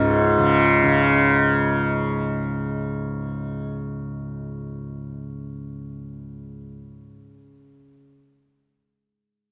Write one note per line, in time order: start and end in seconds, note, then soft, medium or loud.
0.00 6.62 C#2 medium
0.00 7.06 G#2 medium
0.00 0.38 C#3 medium
0.00 1.88 C#4 medium
0.38 0.84 C#3 medium
0.84 7.99 C#3 medium